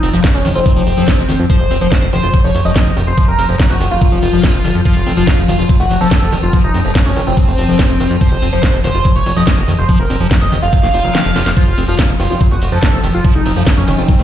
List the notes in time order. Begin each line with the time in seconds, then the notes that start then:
Already playing: F3
0.03 F1 C4, open hi-hat
0.13 F1 F3 F4, closed hi-hat
0.24 F#3, kick, snare, closed hi-hat
0.34 F1 F3 C#4, open hi-hat
0.45 F1 D#3 D#4, open hi-hat
0.55 F1 C4 F4, closed hi-hat
0.66 F#3, kick, closed hi-hat
0.76 F1 F3, closed hi-hat
0.87 F1, open hi-hat
0.97 F1 F3, closed hi-hat
1.08 kick, snare, closed hi-hat
1.18 F1 F3, closed hi-hat
1.29 F1 D#3, open hi-hat
1.39 F2, closed hi-hat
1.50 F3 C5, kick, closed hi-hat
1.60 F1, closed hi-hat
1.71 F1 C4, open hi-hat
1.81 F1 F3 C5, closed hi-hat
1.92 kick, snare, closed hi-hat
2.02 F1 F3, closed hi-hat
2.13 F1 D#3 C5, open hi-hat
2.23 F1 F4, closed hi-hat
2.34 F#3, kick, closed hi-hat
2.44 F1 F3 C#5, closed hi-hat
2.55 F1, open hi-hat
2.65 F1 F3 D#5
2.76 F#3, kick, snare, closed hi-hat
2.86 F1 F3, closed hi-hat
2.97 F1 D#3, open hi-hat
3.07 F1 C5
3.18 F3, kick, closed hi-hat
3.28 F1 A#4, closed hi-hat
3.39 F1 C4, open hi-hat
3.49 F1 F3
3.60 F#3, kick, snare, closed hi-hat
3.70 F1 F3 F#4, open hi-hat
3.81 F1 D#3, open hi-hat
3.91 F1 F4, closed hi-hat
4.02 F#3, kick, closed hi-hat
4.12 F1 F3, closed hi-hat
4.22 F1, open hi-hat
4.33 F1 F3, closed hi-hat
4.43 F#3, kick, snare, closed hi-hat
4.54 F1 F3, closed hi-hat
4.64 F1 D#3, open hi-hat
4.75 F2, closed hi-hat
4.85 F3 F4, kick, closed hi-hat
4.96 F1, closed hi-hat
5.06 F1 C4, open hi-hat
5.17 F1 F3 F4, closed hi-hat
5.27 F#3, kick, snare, closed hi-hat
5.38 F1 F3, closed hi-hat
5.48 F1 D#3 C4 F4, open hi-hat
5.59 F1 C4 F4, closed hi-hat
5.69 F#3, kick, closed hi-hat
5.80 F1 A3 F#4, closed hi-hat
5.90 F1, open hi-hat
6.01 F1 F3 A4, closed hi-hat
6.11 F#3, kick, snare, closed hi-hat
6.22 F1 F3, closed hi-hat
6.32 F1 D#3 C4, open hi-hat
6.43 F1 F4, closed hi-hat
6.53 F3, kick, closed hi-hat
6.64 F1 D#4, closed hi-hat
6.74 F1 C4, open hi-hat
6.85 F1 F3 C4, closed hi-hat
6.95 F#3, kick, snare, closed hi-hat
7.06 F1 F3 C#4, open hi-hat
7.16 F1 D#3, open hi-hat
7.27 F1 C4 F4, closed hi-hat
7.37 F#3, kick, closed hi-hat
7.48 F1 A3, closed hi-hat
7.58 F1, open hi-hat
7.69 F1 F3, closed hi-hat
7.79 F#3, kick, snare, closed hi-hat
7.90 F1 F3, closed hi-hat
8.00 F1 D#3, open hi-hat
8.11 F2
8.21 F3 C5, kick, closed hi-hat
8.32 F1, closed hi-hat
8.42 F1 C4, open hi-hat
8.53 F1 F3 C5
8.63 F#3, kick, snare, closed hi-hat
8.74 F1 F3, closed hi-hat
8.84 F1 D#3 C5, open hi-hat
8.95 F1 F4
9.05 F#3, kick, closed hi-hat
9.15 F1 A3 C#5, closed hi-hat
9.26 F1, open hi-hat
9.36 F1 F3 D#5
9.47 kick, snare, closed hi-hat
9.57 F1 F3, closed hi-hat
9.68 F1 D#3, open hi-hat
9.78 F1 C5, closed hi-hat
9.89 F3, kick, closed hi-hat
9.99 F1 A#4, closed hi-hat
10.10 F1 C4, open hi-hat
10.20 F1 F3, closed hi-hat
10.31 F#3, kick, snare, closed hi-hat
10.41 F1 F3 D#5, open hi-hat
10.52 F1 D#3, open hi-hat
10.62 F1 F4 F5, closed hi-hat
10.73 F#3, kick, closed hi-hat
10.83 F1 A3, snare, closed hi-hat
10.94 F1 F4, open hi-hat
11.04 F1 F#3, closed hi-hat
11.15 D#3, snare, closed hi-hat
11.25 F1 F3, closed hi-hat
11.36 F1 F4, snare, open hi-hat
11.46 F1, snare, closed hi-hat
11.57 F3 F4, kick, closed hi-hat, ride
11.67 F1, closed hi-hat
11.78 F1 C4, open hi-hat, ride
11.88 F1 F3 F4, closed hi-hat
11.99 F#3, kick, snare, closed hi-hat, ride
12.09 F1 F3, closed hi-hat
12.20 F1 D#3 C4 F4, open hi-hat, ride
12.30 F1 C4 F4, closed hi-hat
12.41 F#3, kick, closed hi-hat, ride
12.51 F1 A3 F#4, closed hi-hat
12.62 F1, open hi-hat, ride
12.72 F1 F3 A4, closed hi-hat
12.83 F#3, kick, snare, closed hi-hat, ride
12.93 F1 F3, closed hi-hat
13.04 F1 D#3, open hi-hat, ride
13.14 F1 F4, closed hi-hat
13.25 F3, kick, closed hi-hat, ride
13.35 F1 D#4, closed hi-hat
13.46 F1 C4, open hi-hat, ride
13.56 F1 F3 F4, closed hi-hat
13.67 F#3, kick, snare, closed hi-hat, ride
13.77 F1 F3 C#4, open hi-hat
13.88 F1 D#3 D#4, open hi-hat, ride
13.98 F1 C4 F4, closed hi-hat
14.09 F#3, kick, closed hi-hat, ride
14.19 F1 A3, closed hi-hat